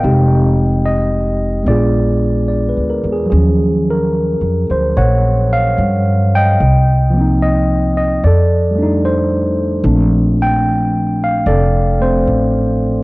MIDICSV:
0, 0, Header, 1, 3, 480
1, 0, Start_track
1, 0, Tempo, 816327
1, 18, Time_signature, 4, 2, 24, 8
1, 7663, End_track
2, 0, Start_track
2, 0, Title_t, "Tine electric piano"
2, 0, Program_c, 0, 4
2, 0, Control_c, 0, 64, 127
2, 0, Note_on_c, 0, 75, 55
2, 0, Note_on_c, 0, 79, 72
2, 20, Note_on_c, 0, 56, 47
2, 25, Note_on_c, 0, 63, 40
2, 26, Control_c, 0, 64, 0
2, 27, Note_on_c, 0, 60, 43
2, 27, Note_on_c, 0, 67, 51
2, 122, Control_c, 0, 64, 127
2, 319, Note_off_c, 0, 79, 0
2, 496, Note_off_c, 0, 75, 0
2, 503, Note_on_c, 0, 75, 74
2, 955, Note_off_c, 0, 56, 0
2, 959, Note_off_c, 0, 75, 0
2, 962, Note_on_c, 0, 56, 38
2, 971, Note_on_c, 0, 59, 36
2, 983, Note_off_c, 0, 63, 0
2, 984, Note_off_c, 0, 60, 0
2, 985, Note_off_c, 0, 67, 0
2, 986, Note_on_c, 0, 62, 34
2, 987, Control_c, 0, 64, 0
2, 987, Note_on_c, 0, 74, 70
2, 994, Note_on_c, 0, 65, 41
2, 1001, Note_on_c, 0, 68, 50
2, 1092, Control_c, 0, 64, 127
2, 1453, Note_off_c, 0, 74, 0
2, 1460, Note_on_c, 0, 74, 37
2, 1583, Note_on_c, 0, 71, 35
2, 1690, Note_off_c, 0, 74, 0
2, 1705, Note_on_c, 0, 70, 37
2, 1792, Note_off_c, 0, 71, 0
2, 1831, Note_off_c, 0, 68, 0
2, 1838, Note_on_c, 0, 68, 43
2, 1852, Note_off_c, 0, 70, 0
2, 1915, Note_on_c, 0, 54, 43
2, 1935, Note_off_c, 0, 56, 0
2, 1935, Note_off_c, 0, 68, 0
2, 1940, Note_off_c, 0, 59, 0
2, 1942, Note_on_c, 0, 68, 38
2, 1947, Note_off_c, 0, 62, 0
2, 1951, Note_off_c, 0, 65, 0
2, 1952, Control_c, 0, 64, 0
2, 1958, Note_on_c, 0, 61, 38
2, 1985, Note_on_c, 0, 53, 46
2, 2064, Control_c, 0, 64, 127
2, 2297, Note_on_c, 0, 70, 59
2, 2771, Note_on_c, 0, 72, 61
2, 2782, Note_off_c, 0, 70, 0
2, 2921, Note_off_c, 0, 72, 0
2, 2922, Note_on_c, 0, 73, 70
2, 2926, Note_on_c, 0, 78, 53
2, 3222, Note_off_c, 0, 73, 0
2, 3250, Note_on_c, 0, 77, 77
2, 3735, Note_on_c, 0, 79, 82
2, 3741, Note_off_c, 0, 77, 0
2, 3743, Note_on_c, 0, 75, 59
2, 3858, Note_off_c, 0, 54, 0
2, 3858, Note_off_c, 0, 78, 0
2, 3871, Note_off_c, 0, 68, 0
2, 3880, Note_off_c, 0, 61, 0
2, 3880, Control_c, 0, 64, 0
2, 3893, Note_off_c, 0, 53, 0
2, 3987, Control_c, 0, 64, 127
2, 4176, Note_on_c, 0, 53, 46
2, 4197, Note_on_c, 0, 58, 42
2, 4217, Note_on_c, 0, 60, 41
2, 4239, Note_on_c, 0, 63, 47
2, 4358, Note_off_c, 0, 75, 0
2, 4365, Note_on_c, 0, 75, 73
2, 4378, Note_off_c, 0, 79, 0
2, 4663, Note_off_c, 0, 75, 0
2, 4688, Note_on_c, 0, 75, 62
2, 4818, Note_off_c, 0, 53, 0
2, 4829, Note_off_c, 0, 58, 0
2, 4837, Control_c, 0, 64, 0
2, 4839, Note_off_c, 0, 60, 0
2, 4839, Note_off_c, 0, 75, 0
2, 4846, Note_on_c, 0, 74, 66
2, 4850, Note_off_c, 0, 63, 0
2, 4861, Note_on_c, 0, 69, 51
2, 4926, Control_c, 0, 64, 127
2, 5121, Note_on_c, 0, 55, 47
2, 5146, Note_on_c, 0, 57, 41
2, 5164, Note_on_c, 0, 62, 47
2, 5190, Note_on_c, 0, 63, 54
2, 5293, Note_off_c, 0, 74, 0
2, 5321, Note_on_c, 0, 72, 61
2, 5693, Note_off_c, 0, 72, 0
2, 5768, Note_off_c, 0, 55, 0
2, 5778, Note_off_c, 0, 69, 0
2, 5781, Note_off_c, 0, 57, 0
2, 5785, Note_off_c, 0, 62, 0
2, 5786, Note_on_c, 0, 53, 42
2, 5787, Note_on_c, 0, 57, 40
2, 5790, Note_on_c, 0, 60, 38
2, 5792, Note_on_c, 0, 62, 47
2, 5793, Control_c, 0, 64, 0
2, 5803, Note_off_c, 0, 63, 0
2, 5894, Control_c, 0, 64, 127
2, 6128, Note_on_c, 0, 79, 83
2, 6608, Note_on_c, 0, 77, 74
2, 6613, Note_off_c, 0, 79, 0
2, 6742, Note_off_c, 0, 77, 0
2, 6744, Note_on_c, 0, 74, 71
2, 6750, Note_on_c, 0, 69, 51
2, 7049, Note_off_c, 0, 57, 0
2, 7057, Note_on_c, 0, 57, 39
2, 7062, Note_off_c, 0, 60, 0
2, 7067, Note_on_c, 0, 72, 60
2, 7069, Note_on_c, 0, 60, 41
2, 7080, Note_off_c, 0, 74, 0
2, 7523, Note_off_c, 0, 72, 0
2, 7663, Note_off_c, 0, 53, 0
2, 7663, Note_off_c, 0, 57, 0
2, 7663, Note_off_c, 0, 60, 0
2, 7663, Note_off_c, 0, 62, 0
2, 7663, Note_off_c, 0, 69, 0
2, 7663, End_track
3, 0, Start_track
3, 0, Title_t, "Upright bass"
3, 0, Program_c, 1, 32
3, 23, Note_on_c, 1, 29, 66
3, 959, Note_off_c, 1, 29, 0
3, 978, Note_on_c, 1, 34, 67
3, 1597, Note_off_c, 1, 34, 0
3, 1630, Note_on_c, 1, 38, 44
3, 1776, Note_off_c, 1, 38, 0
3, 1786, Note_on_c, 1, 40, 51
3, 1935, Note_off_c, 1, 40, 0
3, 1952, Note_on_c, 1, 39, 68
3, 2569, Note_off_c, 1, 39, 0
3, 2593, Note_on_c, 1, 41, 49
3, 2740, Note_off_c, 1, 41, 0
3, 2762, Note_on_c, 1, 38, 50
3, 2905, Note_off_c, 1, 38, 0
3, 2921, Note_on_c, 1, 34, 70
3, 3374, Note_off_c, 1, 34, 0
3, 3398, Note_on_c, 1, 43, 64
3, 3852, Note_off_c, 1, 43, 0
3, 3882, Note_on_c, 1, 36, 69
3, 4811, Note_off_c, 1, 36, 0
3, 4842, Note_on_c, 1, 41, 65
3, 5769, Note_off_c, 1, 41, 0
3, 5785, Note_on_c, 1, 34, 75
3, 6719, Note_off_c, 1, 34, 0
3, 6739, Note_on_c, 1, 29, 72
3, 7196, Note_off_c, 1, 29, 0
3, 7216, Note_on_c, 1, 33, 60
3, 7663, Note_off_c, 1, 33, 0
3, 7663, End_track
0, 0, End_of_file